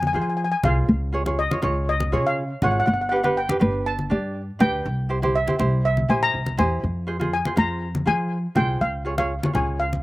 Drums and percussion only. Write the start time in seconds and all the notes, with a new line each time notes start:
0.03 high conga
0.64 high conga, low conga
1.26 high conga
1.51 high conga
1.62 low conga
2.00 high conga
2.62 high conga, low conga
3.24 high conga
3.49 high conga
3.61 low conga
3.99 high conga
4.60 high conga, low conga
5.23 high conga
5.48 high conga
5.59 low conga
5.97 high conga
6.46 high conga
6.59 high conga, low conga
7.21 high conga
7.45 high conga
7.57 low conga
7.95 high conga
8.56 high conga, low conga
9.18 high conga
9.43 high conga
9.55 low conga
9.93 high conga